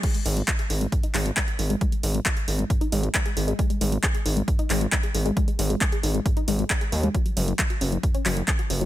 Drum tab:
CC |x---------------|----------------|----------------|----------------|
HH |xxoxxxoxxxoxxxox|xxoxxxoxxxoxxxox|xxoxxxoxxxoxxxox|xxoxxxoxxxoxxxox|
CP |----x-----x-x---|----x-------x---|----x-----x-x---|----x-------x---|
BD |o---o---o---o---|o---o---o---o---|o---o---o---o---|o---o---o---o---|

CC |----------------|
HH |xxoxxxoxxxoxxxox|
CP |----x-----x-x---|
BD |o---o---o---o---|